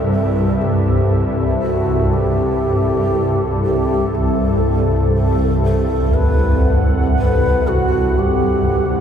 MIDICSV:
0, 0, Header, 1, 5, 480
1, 0, Start_track
1, 0, Tempo, 1005025
1, 54, Time_signature, 4, 2, 24, 8
1, 4301, End_track
2, 0, Start_track
2, 0, Title_t, "Analog synth pad"
2, 0, Program_c, 0, 89
2, 0, Note_on_c, 0, 60, 62
2, 0, Note_on_c, 0, 64, 55
2, 0, Note_on_c, 0, 69, 68
2, 0, Note_on_c, 0, 76, 69
2, 2934, Note_on_c, 0, 78, 76
2, 3077, Note_off_c, 0, 76, 0
2, 4301, Note_off_c, 0, 60, 0
2, 4301, Note_off_c, 0, 64, 0
2, 4301, Note_off_c, 0, 69, 0
2, 4301, Note_off_c, 0, 78, 0
2, 4301, End_track
3, 0, Start_track
3, 0, Title_t, "Shakuhachi"
3, 0, Program_c, 1, 77
3, 0, Note_on_c, 1, 69, 81
3, 54, Note_off_c, 1, 69, 0
3, 57, Note_on_c, 1, 69, 87
3, 293, Note_on_c, 1, 67, 72
3, 300, Note_off_c, 1, 69, 0
3, 645, Note_off_c, 1, 67, 0
3, 774, Note_on_c, 1, 66, 83
3, 1020, Note_on_c, 1, 67, 88
3, 1027, Note_off_c, 1, 66, 0
3, 1730, Note_off_c, 1, 67, 0
3, 1733, Note_on_c, 1, 67, 88
3, 1981, Note_on_c, 1, 69, 79
3, 1988, Note_off_c, 1, 67, 0
3, 2454, Note_off_c, 1, 69, 0
3, 2457, Note_on_c, 1, 69, 86
3, 2679, Note_off_c, 1, 69, 0
3, 2694, Note_on_c, 1, 69, 75
3, 2931, Note_on_c, 1, 71, 85
3, 2938, Note_off_c, 1, 69, 0
3, 3284, Note_off_c, 1, 71, 0
3, 3431, Note_on_c, 1, 71, 85
3, 3666, Note_on_c, 1, 66, 86
3, 3674, Note_off_c, 1, 71, 0
3, 3909, Note_on_c, 1, 67, 75
3, 3916, Note_off_c, 1, 66, 0
3, 4301, Note_off_c, 1, 67, 0
3, 4301, End_track
4, 0, Start_track
4, 0, Title_t, "Synth drone"
4, 0, Program_c, 2, 95
4, 0, Note_on_c, 2, 36, 65
4, 0, Note_on_c, 2, 43, 63
4, 4301, Note_off_c, 2, 36, 0
4, 4301, Note_off_c, 2, 43, 0
4, 4301, End_track
5, 0, Start_track
5, 0, Title_t, "Kettle gongs"
5, 0, Program_c, 3, 14
5, 2184, Note_on_c, 3, 36, 70
5, 2909, Note_on_c, 3, 38, 66
5, 3004, Note_off_c, 3, 36, 0
5, 4301, Note_off_c, 3, 38, 0
5, 4301, End_track
0, 0, End_of_file